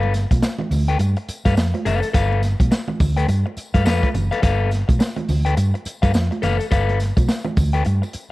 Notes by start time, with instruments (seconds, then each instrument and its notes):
Already playing: fingered electric bass G1, clean electric guitar A4 B4 F5
0.03 muted conga
0.14 snare, closed hi-hat, tambourine
0.31 fingered electric bass B1, muted clean electric guitar stroke, kick, closed hi-hat, tambourine, high conga
0.42 muted clean electric guitar stroke, snare, tambourine, muted conga
0.59 muted clean electric guitar stroke, muted conga, high conga, low conga
0.71 fingered electric bass D2, open hi-hat, tambourine, high conga, low conga
0.88 clean electric guitar A4 B4 G5, closed hi-hat
0.99 fingered electric bass G2, muted clean electric guitar stroke, closed hi-hat, tambourine
1.17 muted clean electric guitar stroke, closed hi-hat
1.29 muted fingered electric bass stroke, closed hi-hat, tambourine
1.45 fingered electric bass G2, clean electric guitar A4 B4 F5, kick, closed hi-hat, tambourine, high conga
1.56 fingered electric bass F2, muted clean electric guitar stroke, snare, tambourine, muted conga
1.74 muted clean electric guitar stroke, closed hi-hat, high conga
1.85 fingered electric bass F#1, clean electric guitar A4 B4 F5, closed hi-hat, tambourine, low conga
2.02 muted clean electric guitar stroke, closed hi-hat, tambourine
2.13 fingered electric bass G1, clean electric guitar A4 B4 F5, kick, closed hi-hat, tambourine, muted conga
2.32 muted conga
2.43 snare, closed hi-hat, tambourine
2.60 fingered electric bass B1, muted clean electric guitar stroke, kick, closed hi-hat, tambourine, high conga
2.71 muted clean electric guitar stroke, snare, tambourine, muted conga
2.88 muted clean electric guitar stroke, muted conga, high conga, low conga
3.00 fingered electric bass D2, kick, open hi-hat, tambourine, high conga, low conga
3.17 clean electric guitar A4 B4 G5, closed hi-hat
3.28 fingered electric bass G2, muted clean electric guitar stroke, closed hi-hat, tambourine, muted conga
3.46 muted clean electric guitar stroke, muted conga
3.57 muted fingered electric bass stroke, closed hi-hat, tambourine
3.74 fingered electric bass G2, clean electric guitar A4 B4 F5, kick, closed hi-hat, tambourine, high conga
3.85 fingered electric bass F2, clean electric guitar A4 B4 F5, snare, tambourine
4.03 kick, closed hi-hat, high conga
4.14 fingered electric bass F#1, muted clean electric guitar stroke, closed hi-hat, tambourine, low conga
4.31 clean electric guitar A4 B4 F5, closed hi-hat
4.42 fingered electric bass G1, clean electric guitar A4 B4 F5, kick, closed hi-hat, tambourine
4.71 snare, closed hi-hat, tambourine
4.88 fingered electric bass B1, muted clean electric guitar stroke, kick, closed hi-hat, tambourine, high conga
4.99 muted clean electric guitar stroke, snare, tambourine, muted conga
5.16 muted clean electric guitar stroke, closed hi-hat, muted conga, high conga, low conga
5.29 fingered electric bass D2, open hi-hat, tambourine, high conga, low conga
5.45 clean electric guitar A4 B4 G5, closed hi-hat
5.57 fingered electric bass G2, muted clean electric guitar stroke, closed hi-hat, tambourine, muted conga
5.74 muted clean electric guitar stroke, closed hi-hat, muted conga
5.85 muted fingered electric bass stroke, closed hi-hat, tambourine
6.02 fingered electric bass G2, clean electric guitar A4 B4 F5, kick, closed hi-hat, tambourine, high conga
6.14 fingered electric bass F2, muted clean electric guitar stroke, snare, tambourine, muted conga
6.31 muted clean electric guitar stroke, closed hi-hat, high conga
6.42 fingered electric bass F#1, clean electric guitar A4 B4 F5, closed hi-hat, tambourine, low conga
6.59 muted clean electric guitar stroke, closed hi-hat, tambourine
6.71 fingered electric bass G1, clean electric guitar A4 B4 F5, kick, closed hi-hat, tambourine
6.89 closed hi-hat, muted conga
7.00 snare, closed hi-hat, tambourine
7.17 fingered electric bass B1, muted clean electric guitar stroke, kick, closed hi-hat, tambourine, high conga
7.28 muted clean electric guitar stroke, snare, tambourine, muted conga
7.45 muted clean electric guitar stroke, muted conga, high conga, low conga
7.57 fingered electric bass D2, kick, open hi-hat, tambourine, high conga, low conga
7.73 clean electric guitar A4 B4 G5, closed hi-hat
7.85 fingered electric bass G2, muted clean electric guitar stroke, closed hi-hat, tambourine
8.02 muted clean electric guitar stroke, tambourine, muted conga
8.13 muted fingered electric bass stroke, closed hi-hat, tambourine